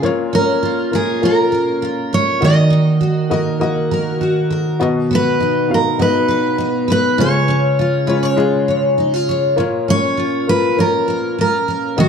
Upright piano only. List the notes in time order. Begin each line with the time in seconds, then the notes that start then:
0.02 A#3 F4 C#5
0.91 A#3 F4 A#4
1.21 A#3 F4 C#5
2.40 A#3 F#4 D#5
3.30 A#3 F#4 D#5
3.60 A#3 F#4 D#5
4.79 B3 F#4 D#5
5.68 B3 F#4 F5
5.99 B3 F#4 D#5
7.18 G#3 F4 C#5
8.07 G#3 F4 C#5
8.36 G#3 F4 G#4
9.56 A#3 F4 C#5
10.47 A#3 F4 A#4
10.77 A#3 F4 C#5
11.96 A#3 F#4 D#5